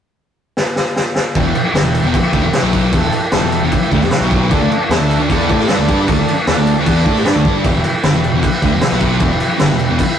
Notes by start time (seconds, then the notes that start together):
0.57 snare
0.76 snare
0.96 snare
1.15 snare
1.35 E1 E2 B2 E4 G4 B4, kick, crash
1.45 E1 E2 B2
1.54 muted picked electric bass stroke, muted distorted electric guitar stroke, crash
1.74 G1 G2 D3 E4 G4 B4, snare, crash
1.83 E1 E2 B2
1.95 crash
2.02 E1 E2 B2
2.14 E4 G4 B4, kick, crash
2.33 D2 D3 A3, kick, crash
2.42 E1 E2 B2
2.52 E4 G4, muted picked electric bass stroke, muted distorted electric guitar stroke, snare, crash
2.58 B4
2.62 B1 B2 F#3 B3
2.73 kick, crash
2.92 E1 E2 B2 E4 G4, kick, crash
2.97 A4
3.02 E1 E2 B2
3.12 muted picked electric bass stroke, muted distorted electric guitar stroke, crash
3.32 G1 G2 D3 E4 G4 A4, snare, crash
3.41 E1 E2 B2
3.52 crash
3.62 E1 E2 B2
3.72 E4 G4 B4, kick, crash
3.92 D2 D3 A3, kick, crash
4.01 E1 E2 B2, snare
4.11 E4 G4 B4, muted distorted electric guitar stroke, muted picked electric bass stroke, snare, crash
4.21 B1 B2 F#3 B3
4.31 kick, crash
4.51 D2 D3 A3 D4 A4 D5, kick, crash
4.61 D2 D3 A3
4.70 muted distorted electric guitar stroke, muted picked electric bass stroke, crash
4.89 E2 E3 B3 D4 A4 E5, snare, crash
4.99 D2 D3 A3
5.11 crash
5.19 D2 D3 A3
5.29 E2 E3 B3 D4 E4 A4, kick, crash
5.34 D5
5.49 A2 A3 E4 A4, kick, crash
5.60 snare
5.68 G2 G3 D4 A4 D5, snare, crash
5.78 D2 D3 A3
5.88 G2 G3 D4 G4, kick, crash
6.07 D2 D3 A3 D4 A4 D5, kick, crash
6.18 D2 D3 A3
6.27 muted picked electric bass stroke, muted distorted electric guitar stroke, crash
6.46 E2 E3 B3 D4 A4 D5, snare, crash
6.57 D2 D3 A3
6.67 crash
6.77 D2 D3 A3
6.86 E2 E3 B3 D4 E4 A4 D5, kick, crash
7.05 A2 A3 E4 A4, kick, crash
7.15 snare
7.25 G2 G3 D4 A4 D5, snare, crash
7.35 D2 D3 A3
7.44 G2 G3 D4 G4, kick, crash
7.64 E1 E2 B2 E4 G4 B4, kick, crash
7.74 E1 E2 B2
7.84 muted picked electric bass stroke, muted distorted electric guitar stroke, crash
8.03 G1 G2 D3 E4 G4 B4, snare, crash
8.12 E1 E2 B2
8.24 crash
8.32 E1 E2 B2
8.43 E4 G4 B4, kick, crash
8.62 D2 D3 A3, kick, crash
8.73 E1 E2 B2
8.81 E4 G4 B4, muted distorted electric guitar stroke, muted picked electric bass stroke, snare, crash
8.92 B1 B2 F#3 B3
9.00 kick, crash
9.20 E1 E2 B2 E4 G4 B4, kick, crash
9.31 E1 E2 B2
9.40 muted distorted electric guitar stroke, muted picked electric bass stroke, crash
9.58 G1 G2 D3 E4 G4 B4, snare, crash
9.70 E1 E2 B2
9.79 crash
9.89 E1 E2 B2
9.98 E4 G4 B4, kick, crash